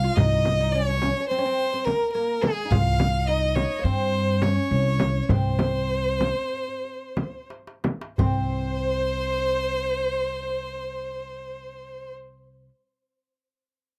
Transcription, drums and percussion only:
0.17 darbuka dum loud
0.17 frame drum medium
0.45 darbuka tek medium
0.45 frame drum medium
1.02 darbuka tek medium
1.02 frame drum medium
1.59 darbuka ka soft
1.87 darbuka tek medium
1.87 frame drum medium
2.16 darbuka ka soft
2.43 darbuka tek medium
2.43 frame drum medium
2.72 darbuka dum medium
2.72 frame drum medium
3.00 darbuka tek medium
3.00 frame drum medium
3.56 darbuka tek medium
3.56 frame drum medium
4.13 darbuka ka soft
4.42 darbuka tek medium
4.42 frame drum medium
4.71 darbuka ka soft
5.00 darbuka tek medium
5.00 frame drum medium
5.29 frame drum medium
5.29 darbuka dum medium
5.59 darbuka tek medium
5.59 frame drum medium
5.90 darbuka ka soft
6.20 darbuka tek medium
6.20 frame drum medium
6.53 darbuka ka soft
6.68 darbuka ka soft
6.84 darbuka ka soft
7.17 darbuka tek medium
7.17 frame drum medium
7.50 darbuka tek medium
7.67 darbuka ka medium
7.84 darbuka tek medium
7.84 frame drum medium
8.01 darbuka ka medium
8.18 darbuka dum medium
8.18 frame drum medium

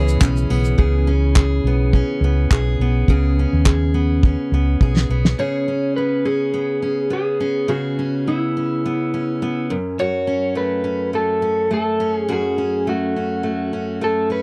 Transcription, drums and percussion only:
0.08 shaker medium
0.21 kick loud
0.21 clap loud
0.21 shaker medium
0.37 shaker soft
0.50 tambourine medium
0.65 shaker soft
0.79 kick medium
1.36 kick loud
1.36 clap loud
1.93 kick medium
2.51 kick loud
2.51 clap loud
3.08 kick medium
3.66 kick loud
3.66 clap loud
4.23 kick loud
4.81 kick loud
4.97 snare medium
5.25 snare medium

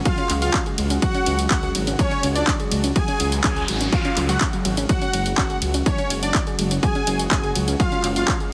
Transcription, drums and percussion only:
0.05 kick loud
0.05 closed hi-hat medium
0.05 ride medium
0.18 closed hi-hat soft
0.30 clap soft
0.30 open hi-hat loud
0.30 ride medium
0.42 closed hi-hat medium
0.54 kick loud
0.54 clap loud
0.54 closed hi-hat medium
0.54 ride medium
0.66 closed hi-hat soft
0.78 open hi-hat medium
0.78 ride medium
0.90 closed hi-hat medium
1.02 kick loud
1.02 closed hi-hat medium
1.02 ride medium
1.15 closed hi-hat soft
1.26 open hi-hat loud
1.26 ride medium
1.39 closed hi-hat medium
1.51 kick loud
1.51 clap loud
1.51 closed hi-hat medium
1.51 ride medium
1.63 closed hi-hat soft
1.75 open hi-hat medium
1.75 ride medium
1.87 closed hi-hat medium
1.99 kick loud
1.99 closed hi-hat medium
1.99 ride medium
2.11 closed hi-hat soft
2.23 open hi-hat loud
2.23 ride medium
2.36 closed hi-hat medium
2.47 kick loud
2.47 clap loud
2.47 closed hi-hat medium
2.47 ride medium
2.60 closed hi-hat soft
2.72 open hi-hat medium
2.72 ride medium
2.84 closed hi-hat medium
2.96 kick loud
2.96 closed hi-hat medium
2.96 ride medium
3.08 closed hi-hat soft
3.20 open hi-hat loud
3.20 ride medium
3.32 closed hi-hat medium
3.44 kick loud
3.44 clap loud
3.44 closed hi-hat medium
3.44 ride medium
3.56 closed hi-hat soft
3.68 open hi-hat medium
3.68 ride medium
3.81 closed hi-hat medium
3.92 kick loud
3.92 closed hi-hat medium
3.92 ride medium
4.05 closed hi-hat soft
4.17 clap soft
4.17 open hi-hat loud
4.17 ride medium
4.29 closed hi-hat medium
4.41 kick loud
4.41 clap loud
4.41 closed hi-hat medium
4.41 ride medium
4.53 closed hi-hat soft
4.65 open hi-hat medium
4.65 ride medium
4.77 closed hi-hat medium
4.89 kick loud
4.89 closed hi-hat medium
4.89 ride medium
5.02 closed hi-hat soft
5.13 open hi-hat loud
5.13 ride medium
5.26 closed hi-hat medium
5.38 kick loud
5.38 clap loud
5.38 closed hi-hat medium
5.38 ride medium
5.50 closed hi-hat soft
5.62 open hi-hat medium
5.62 ride medium
5.74 closed hi-hat medium
5.86 kick loud
5.86 closed hi-hat medium
5.86 ride medium
5.98 closed hi-hat soft
6.10 open hi-hat loud
6.10 ride medium
6.23 closed hi-hat medium
6.34 kick loud
6.34 clap loud
6.34 closed hi-hat medium
6.34 ride medium
6.47 closed hi-hat soft
6.59 open hi-hat loud
6.59 ride medium
6.71 closed hi-hat medium
6.83 kick loud
6.83 closed hi-hat medium
6.83 ride soft
6.95 closed hi-hat soft
7.07 open hi-hat loud
7.07 ride medium
7.19 closed hi-hat medium
7.31 kick loud
7.31 clap loud
7.31 closed hi-hat medium
7.31 ride medium
7.44 closed hi-hat soft
7.55 open hi-hat loud
7.55 ride medium
7.68 closed hi-hat medium
7.80 kick loud
7.80 closed hi-hat medium
7.80 ride medium
7.92 closed hi-hat soft
8.04 clap soft
8.04 open hi-hat loud
8.04 ride medium
8.16 closed hi-hat medium
8.28 kick loud
8.28 clap loud
8.28 closed hi-hat medium
8.28 ride medium
8.40 closed hi-hat soft

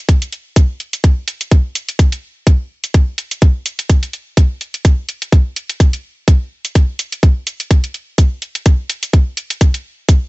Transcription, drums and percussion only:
0.09 kick loud
0.09 closed hi-hat medium
0.22 closed hi-hat medium
0.33 closed hi-hat soft
0.56 kick loud
0.56 closed hi-hat medium
0.80 closed hi-hat soft
0.93 closed hi-hat soft
1.04 kick loud
1.04 closed hi-hat medium
1.28 closed hi-hat medium
1.41 closed hi-hat soft
1.51 kick loud
1.51 closed hi-hat soft
1.75 closed hi-hat medium
1.89 closed hi-hat soft
1.99 kick loud
1.99 closed hi-hat medium
2.12 closed hi-hat soft
2.47 kick loud
2.47 closed hi-hat medium
2.84 closed hi-hat soft
2.94 kick loud
2.94 closed hi-hat medium
3.18 closed hi-hat medium
3.31 closed hi-hat soft
3.42 kick loud
3.42 closed hi-hat soft
3.66 closed hi-hat medium
3.79 closed hi-hat soft
3.90 kick loud
3.90 closed hi-hat medium
4.03 closed hi-hat soft
4.13 closed hi-hat soft
4.37 kick loud
4.37 closed hi-hat medium
4.61 closed hi-hat soft
4.74 closed hi-hat soft
4.85 kick loud
4.85 closed hi-hat medium
5.09 closed hi-hat medium
5.22 closed hi-hat soft
5.32 kick loud
5.32 closed hi-hat soft
5.56 closed hi-hat medium
5.69 closed hi-hat soft
5.80 kick loud
5.80 closed hi-hat medium
5.93 closed hi-hat soft
6.28 kick loud
6.28 closed hi-hat medium
6.65 closed hi-hat soft
6.75 kick loud
6.75 closed hi-hat medium
6.99 closed hi-hat medium
7.12 closed hi-hat soft
7.23 kick loud
7.23 closed hi-hat soft
7.47 closed hi-hat medium
7.60 closed hi-hat soft
7.71 kick loud
7.71 closed hi-hat medium
7.84 closed hi-hat medium
7.94 closed hi-hat soft
8.18 kick medium
8.18 closed hi-hat medium
8.42 closed hi-hat soft
8.55 closed hi-hat soft
8.66 kick loud
8.66 closed hi-hat medium
8.90 closed hi-hat medium
9.03 closed hi-hat medium
9.13 kick medium
9.13 closed hi-hat soft
9.37 closed hi-hat medium
9.50 closed hi-hat soft
9.61 kick loud
9.61 closed hi-hat medium
9.74 closed hi-hat medium
10.09 kick medium
10.09 closed hi-hat medium

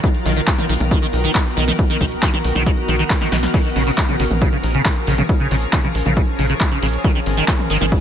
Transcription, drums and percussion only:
0.04 kick loud
0.04 closed hi-hat medium
0.04 tambourine soft
0.15 closed hi-hat soft
0.26 open hi-hat loud
0.26 tambourine medium
0.36 closed hi-hat medium
0.36 tambourine soft
0.47 kick loud
0.47 clap loud
0.47 closed hi-hat medium
0.47 tambourine soft
0.58 closed hi-hat soft
0.58 mid tom medium
0.69 open hi-hat loud
0.69 tambourine medium
0.80 closed hi-hat medium
0.80 mid tom medium
0.80 tambourine soft
0.91 kick loud
0.91 closed hi-hat medium
0.91 tambourine soft
1.02 closed hi-hat soft
1.13 open hi-hat loud
1.13 tambourine medium
1.24 closed hi-hat medium
1.24 tambourine soft
1.35 kick loud
1.35 clap loud
1.35 closed hi-hat medium
1.35 tambourine soft
1.46 closed hi-hat soft
1.57 open hi-hat loud
1.57 tambourine medium
1.68 closed hi-hat medium
1.68 mid tom medium
1.68 tambourine soft
1.79 kick loud
1.79 closed hi-hat medium
1.79 tambourine soft
1.90 closed hi-hat soft
2.01 kick medium
2.01 open hi-hat loud
2.01 tambourine medium
2.12 closed hi-hat medium
2.12 tambourine soft
2.23 kick loud
2.23 clap loud
2.23 closed hi-hat medium
2.23 tambourine soft
2.34 closed hi-hat soft
2.34 mid tom medium
2.45 open hi-hat loud
2.45 tambourine medium
2.55 closed hi-hat medium
2.55 mid tom medium
2.55 tambourine soft
2.66 kick loud
2.66 closed hi-hat medium
2.66 tambourine soft
2.77 closed hi-hat soft
2.88 open hi-hat loud
2.88 tambourine medium
2.99 closed hi-hat medium
2.99 tambourine soft
3.10 kick loud
3.10 clap loud
3.10 closed hi-hat medium
3.10 tambourine soft
3.21 snare medium
3.21 closed hi-hat soft
3.32 snare medium
3.32 open hi-hat loud
3.32 tambourine medium
3.43 snare medium
3.43 closed hi-hat medium
3.43 tambourine soft
3.54 kick loud
3.54 closed hi-hat medium
3.54 crash medium
3.54 ride medium
3.54 tambourine soft
3.65 closed hi-hat soft
3.76 open hi-hat loud
3.76 ride medium
3.76 tambourine medium
3.87 closed hi-hat medium
3.87 tambourine soft
3.98 kick loud
3.98 clap loud
3.98 closed hi-hat medium
3.98 ride medium
3.98 tambourine soft
4.09 closed hi-hat soft
4.09 mid tom medium
4.20 open hi-hat loud
4.20 ride medium
4.20 tambourine medium
4.31 closed hi-hat medium
4.31 mid tom medium
4.31 tambourine soft
4.42 kick loud
4.42 closed hi-hat medium
4.42 ride medium
4.42 tambourine soft
4.53 closed hi-hat soft
4.63 open hi-hat loud
4.63 ride medium
4.63 tambourine medium
4.74 closed hi-hat medium
4.74 tambourine soft
4.85 kick loud
4.85 clap loud
4.85 closed hi-hat medium
4.85 ride medium
4.85 tambourine soft
4.96 closed hi-hat soft
5.07 open hi-hat loud
5.07 ride medium
5.07 tambourine medium
5.18 closed hi-hat medium
5.18 mid tom medium
5.18 tambourine soft
5.29 kick loud
5.29 closed hi-hat medium
5.29 ride medium
5.29 tambourine soft
5.40 closed hi-hat soft
5.51 open hi-hat loud
5.51 ride medium
5.51 tambourine medium
5.62 closed hi-hat medium
5.62 tambourine soft
5.73 kick loud
5.73 clap loud
5.73 closed hi-hat medium
5.73 ride medium
5.73 tambourine soft
5.84 closed hi-hat soft
5.84 mid tom medium
5.95 open hi-hat loud
5.95 ride medium
5.95 tambourine medium
6.06 closed hi-hat medium
6.06 mid tom medium
6.06 tambourine soft
6.17 kick loud
6.17 closed hi-hat medium
6.17 ride medium
6.17 tambourine soft
6.28 closed hi-hat soft
6.39 open hi-hat loud
6.39 ride medium
6.39 tambourine medium
6.50 closed hi-hat medium
6.50 tambourine soft
6.61 kick loud
6.61 clap loud
6.61 closed hi-hat medium
6.61 ride medium
6.61 tambourine soft
6.72 closed hi-hat soft
6.82 open hi-hat loud
6.82 ride medium
6.82 tambourine medium
6.93 closed hi-hat medium
6.93 tambourine soft
7.04 kick loud
7.04 closed hi-hat medium
7.04 ride medium
7.04 tambourine soft
7.15 closed hi-hat soft
7.26 open hi-hat loud
7.26 ride medium
7.26 tambourine medium
7.37 closed hi-hat medium
7.37 tambourine soft
7.48 kick loud
7.48 clap loud
7.48 closed hi-hat medium
7.48 ride medium
7.48 tambourine soft
7.59 closed hi-hat soft
7.59 mid tom medium
7.70 open hi-hat loud
7.70 ride medium
7.70 tambourine medium
7.81 closed hi-hat medium
7.81 mid tom medium
7.81 tambourine soft
7.92 kick loud
7.92 closed hi-hat medium
7.92 ride medium
7.92 tambourine soft

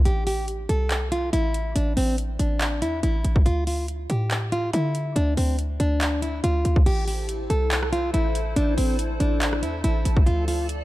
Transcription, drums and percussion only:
0.05 closed hi-hat medium
0.27 open hi-hat medium
0.48 closed hi-hat medium
0.69 closed hi-hat medium
0.91 clap loud
0.91 closed hi-hat medium
1.12 closed hi-hat medium
1.33 closed hi-hat medium
1.54 closed hi-hat medium
1.76 closed hi-hat medium
1.97 open hi-hat medium
2.18 closed hi-hat medium
2.39 closed hi-hat medium
2.61 clap loud
2.61 closed hi-hat medium
2.82 closed hi-hat medium
3.03 closed hi-hat medium
3.25 closed hi-hat medium
3.36 kick loud
3.46 closed hi-hat loud
3.67 open hi-hat medium
3.88 closed hi-hat medium
4.10 closed hi-hat medium
4.31 clap loud
4.31 closed hi-hat medium
4.52 closed hi-hat medium
4.73 closed hi-hat medium
4.95 closed hi-hat medium
5.16 closed hi-hat medium
5.37 open hi-hat medium
5.59 closed hi-hat medium
5.80 closed hi-hat medium
6.01 clap loud
6.01 closed hi-hat medium
6.22 closed hi-hat medium
6.44 closed hi-hat medium
6.65 closed hi-hat medium
6.76 kick medium
6.86 closed hi-hat loud
6.86 crash loud
7.08 open hi-hat medium
7.29 closed hi-hat medium
7.50 closed hi-hat medium
7.71 clap loud
7.71 closed hi-hat medium
7.83 cross-stick loud
7.93 closed hi-hat medium
8.14 closed hi-hat medium
8.35 closed hi-hat medium
8.56 closed hi-hat medium
8.78 open hi-hat medium
8.99 closed hi-hat medium
9.20 closed hi-hat medium
9.41 clap loud
9.41 closed hi-hat medium
9.53 cross-stick medium
9.63 closed hi-hat medium
9.84 closed hi-hat medium
10.05 closed hi-hat medium
10.17 kick loud
10.27 closed hi-hat loud
10.48 open hi-hat medium
10.69 closed hi-hat medium

